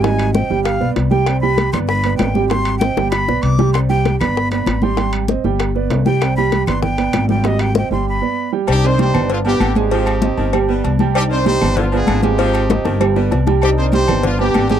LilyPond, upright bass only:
\new Staff \with { instrumentName = "Upright bass" } { \clef bass \time 4/4 \key g \phrygian \tempo 4 = 194 aes,,4. g,,4 b,,8 c,4~ | c,4. g,,4. aes,,4~ | aes,,4. g,,4 b,,8 c,4~ | c,4. g,,4. aes,,4~ |
aes,,4. g,,4. c,4~ | c,4. g,,4. aes,,4~ | aes,,4. g,,4 r4. | c,4. g,,4. aes,,4~ |
aes,,4. g,,4. c,4~ | c,4. g,,4. aes,,4~ | aes,,4. g,,4. c,4~ | c,4. g,,4. aes,,4 | }